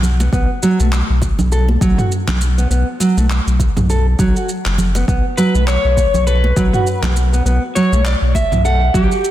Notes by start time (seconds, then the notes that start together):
Already playing: B1
0.02 low conga, shaker
0.20 B3, muted conga, shaker
0.33 B1 B3, kick, shaker
0.63 F#3, muted conga, shaker
0.79 B1 A3, high conga, shaker
0.92 clap, shaker
1.10 B1
1.21 kick, muted conga, high conga, shaker
1.39 B1, high conga, low conga, shaker
1.52 A4, shaker
1.69 muted conga, high conga
1.81 B1 F#3, kick, shaker
1.98 F#4, mid tom, shaker
2.12 shaker
2.27 B1, clap, high conga, low conga, shaker
2.41 muted conga, shaker
2.58 B3, shaker
2.70 B1 B3, shaker
3.00 F#3, muted conga, shaker
3.17 B1 A3, high conga, shaker
3.30 clap, shaker
3.47 B1, shaker
3.60 kick, muted conga, high conga, shaker
3.77 B1, mid tom, high conga, low conga, shaker
3.90 A4, shaker
4.19 B1 F#3, kick, shaker
4.36 F#4, shaker
4.49 shaker
4.65 F#1, clap, shaker
4.78 low conga, shaker
4.95 B3, muted conga, shaker
5.08 B1 B3, kick, shaker
5.37 F#3 B4, muted conga, shaker
5.54 B1 A3, high conga, shaker
5.67 C#5, clap, shaker
5.84 B1
5.97 kick, muted conga, high conga, shaker
6.14 B1, high conga, low conga, shaker
6.27 A4 B4, shaker
6.44 muted conga, high conga
6.56 B1 F#3, kick, shaker
6.73 F#4, mid tom, shaker
6.87 shaker
7.03 B1, clap, high conga, low conga, shaker
7.16 muted conga, shaker
7.33 B3, shaker
7.45 B1 B3, shaker
7.75 F#3 C#5, muted conga, shaker
7.92 B1 A3, high conga, shaker
8.05 D5, clap, shaker
8.22 B1
8.35 E5, kick, muted conga, high conga, shaker
8.51 B1, mid tom, high conga, low conga, shaker
8.65 A4 F#5, shaker
8.94 B1 F#3 G4, kick, shaker
9.11 F#4, shaker
9.25 shaker